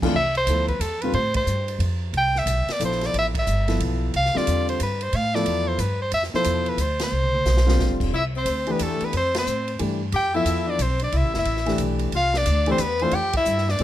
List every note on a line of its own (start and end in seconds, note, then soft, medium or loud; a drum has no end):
0.02 0.13 F2 medium
0.02 0.13 E3 medium
0.02 0.14 A3 medium
0.02 0.14 D4 medium
0.02 0.13 F4 medium
0.02 muted upright bass stroke soft
0.02 kick medium
0.02 crash medium
0.13 0.46 C2 medium
0.13 0.35 E5 loud
0.35 0.67 C5 medium
0.35 ride soft
0.46 0.79 D2 medium
0.46 0.67 F3 medium
0.46 0.67 B3 soft
0.46 0.67 E4 soft
0.46 0.68 A4 medium
0.46 hi-hat pedal medium
0.46 ride medium
0.68 0.82 B4 medium
0.68 kick soft
0.68 ride soft
0.80 1.12 E2 medium
0.80 1.03 A4 medium
0.80 hi-hat pedal medium
0.80 ride medium
1.02 1.14 D3 medium
1.02 1.14 G3 medium
1.02 1.14 C4 medium
1.02 1.14 F4 medium
1.02 1.14 B4 medium
1.02 ride soft
1.14 1.46 A2 medium
1.14 1.34 C5 medium
1.14 ride medium
1.34 1.78 C5 medium
1.34 kick medium
1.34 ride medium
1.46 1.78 G2 medium
1.46 hi-hat pedal medium
1.68 ride soft
1.79 2.12 F2 medium
1.79 ride medium
2.13 2.45 C2 medium
2.13 ride soft
2.18 2.40 G5 loud
2.35 2.73 E5 medium
2.35 snare soft
2.46 2.66 B1 medium
2.46 hi-hat pedal medium
2.46 ride medium
2.67 muted upright bass stroke soft
2.67 snare soft
2.67 ride soft
2.72 2.82 D5 medium
2.80 3.12 A#1 medium
2.80 3.30 F3 medium
2.80 3.30 B3 soft
2.80 3.30 E4 soft
2.80 3.30 A4 medium
2.80 hi-hat pedal soft
2.80 ride medium
2.85 3.08 C5 medium
2.92 snare soft
3.01 snare soft
3.01 ride soft
3.06 3.16 D5 medium
3.14 3.46 A1 medium
3.14 ride medium
3.19 3.27 E5 medium
3.35 kick medium
3.35 ride medium
3.39 3.79 E5 medium
3.47 3.79 G1 medium
3.47 hi-hat pedal medium
3.68 4.11 F3 medium
3.68 4.11 B3 medium
3.68 4.11 E4 medium
3.68 4.11 A4 medium
3.68 snare soft
3.68 ride soft
3.80 4.12 B1 medium
3.80 ride medium
4.14 4.33 C2 medium
4.14 4.39 F5 medium
4.14 ride medium
4.25 snare soft
4.34 4.77 D3 medium
4.34 4.77 G3 medium
4.34 4.78 C4 medium
4.34 4.78 F4 medium
4.34 4.69 D5 medium
4.34 muted upright bass stroke soft
4.34 snare soft
4.47 4.79 E2 medium
4.47 hi-hat pedal medium
4.47 ride medium
4.69 4.80 C5 medium
4.69 ride soft
4.80 5.12 G2 medium
4.80 5.05 B4 medium
4.80 hi-hat pedal soft
4.80 ride medium
5.01 5.17 C5 medium
5.01 ride soft
5.13 5.45 A2 medium
5.13 5.36 F5 medium
5.13 ride medium
5.34 5.77 F3 medium
5.34 5.77 B3 medium
5.34 5.78 E4 medium
5.34 5.78 A4 medium
5.34 5.69 D5 medium
5.34 snare soft
5.45 5.78 E2 medium
5.45 ride medium
5.68 5.82 C5 medium
5.78 6.11 G2 medium
5.78 6.01 B4 medium
5.78 hi-hat pedal medium
5.78 ride medium
6.02 6.13 C5 medium
6.12 6.32 F2 medium
6.12 6.23 E5 medium
6.12 ride medium
6.23 snare soft
6.33 6.77 B2 medium
6.33 6.77 F3 medium
6.33 6.77 E4 medium
6.33 6.77 A4 medium
6.33 6.71 C5 medium
6.33 muted upright bass stroke soft
6.33 snare soft
6.44 6.77 E2 medium
6.44 hi-hat pedal medium
6.44 ride medium
6.66 6.83 B4 medium
6.66 ride soft
6.77 7.11 D2 medium
6.77 hi-hat pedal medium
6.77 ride medium
6.82 7.02 C5 medium
6.99 7.98 C5 medium
6.99 snare medium
6.99 ride medium
7.11 7.44 C2 medium
7.24 mid tom soft
7.35 mid tom medium
7.45 7.78 B1 medium
7.45 snare medium
7.45 hi-hat pedal medium
7.57 snare medium
7.66 8.10 D3 medium
7.66 8.10 G3 medium
7.66 8.10 C4 medium
7.66 8.10 F4 medium
7.66 snare medium
7.78 7.90 A1 medium
7.78 snare medium
7.90 8.00 F1 soft
8.00 8.11 E1 medium
8.00 kick medium
8.00 crash medium
8.11 8.44 C2 medium
8.11 8.23 E4 medium
8.16 8.24 E5 medium
8.36 8.71 C4 medium
8.36 8.73 C5 medium
8.45 8.78 D2 medium
8.45 hi-hat pedal medium
8.45 ride medium
8.67 9.10 E3 medium
8.67 9.10 A3 medium
8.67 8.83 B3 medium
8.67 9.11 D4 medium
8.67 9.10 G4 medium
8.67 ride soft
8.72 8.84 B4 medium
8.79 8.99 E2 medium
8.79 9.05 A3 medium
8.79 9.06 A4 medium
8.79 hi-hat pedal medium
8.79 ride medium
9.01 9.14 B3 medium
9.01 muted upright bass stroke soft
9.01 ride soft
9.05 9.15 B4 medium
9.13 9.45 F2 medium
9.13 9.34 C4 medium
9.13 9.35 C5 medium
9.13 ride medium
9.35 9.79 C4 medium
9.35 9.79 C5 medium
9.35 snare medium
9.35 ride medium
9.46 9.79 A2 medium
9.46 hi-hat pedal medium
9.68 ride soft
9.79 10.12 G2 medium
9.79 9.98 E3 medium
9.79 9.98 A3 soft
9.79 9.99 D4 soft
9.79 9.98 G4 medium
9.79 ride medium
10.12 10.44 F2 medium
10.12 10.33 G4 medium
10.12 10.34 G5 loud
10.12 ride medium
10.34 10.77 F3 medium
10.34 10.77 B3 medium
10.34 10.69 E4 medium
10.34 10.78 E4 medium
10.34 10.78 A4 medium
10.34 10.71 E5 medium
10.45 10.78 E2 medium
10.45 hi-hat pedal soft
10.45 ride medium
10.67 10.83 D4 medium
10.67 10.84 D5 medium
10.78 11.11 B1 medium
10.78 11.01 C4 medium
10.78 11.02 C5 medium
10.78 hi-hat pedal medium
10.78 ride medium
11.00 11.15 D4 medium
11.00 ride soft
11.04 11.18 D5 medium
11.12 11.24 C2 medium
11.12 11.34 E4 medium
11.12 ride medium
11.17 11.36 E5 medium
11.24 11.34 A1 medium
11.34 11.44 F1 medium
11.34 11.77 E4 medium
11.34 snare soft
11.39 11.79 E5 medium
11.45 11.78 A1 medium
11.45 ride medium
11.57 snare soft
11.66 12.10 E3 medium
11.66 12.10 A3 medium
11.66 12.10 D4 medium
11.66 12.10 G4 medium
11.66 snare soft
11.66 ride soft
11.78 12.11 B1 medium
11.78 hi-hat pedal soft
11.78 ride medium
11.99 ride soft
12.12 12.45 C2 medium
12.12 12.37 F4 medium
12.12 ride medium
12.16 12.39 F5 medium
12.34 12.68 D4 medium
12.34 12.69 D5 medium
12.34 snare medium
12.46 12.78 D2 medium
12.46 hi-hat pedal medium
12.46 ride medium
12.66 12.78 E3 medium
12.66 12.78 A3 medium
12.66 12.84 C4 medium
12.66 12.79 D4 medium
12.66 12.79 G4 medium
12.66 ride soft
12.71 12.83 C5 medium
12.78 13.11 E2 medium
12.78 13.05 B3 medium
12.78 13.04 B4 medium
12.78 hi-hat pedal medium
12.78 ride medium
12.99 13.12 E3 medium
12.99 13.13 A3 medium
12.99 13.17 C4 medium
12.99 13.12 D4 medium
12.99 13.13 F4 medium
12.99 13.16 C5 medium
12.99 ride soft
13.11 13.45 F2 medium
13.11 13.35 G4 medium
13.11 13.35 G5 loud
13.11 ride medium
13.33 13.71 E4 medium
13.33 13.72 E5 medium
13.33 kick medium
13.33 ride medium
13.45 13.79 G2 medium
13.45 hi-hat pedal medium
13.58 snare soft
13.69 13.80 D4 medium
13.69 13.81 D5 medium
13.69 snare soft
13.79 13.84 A2 medium
13.79 13.84 G#3 medium
13.79 ride medium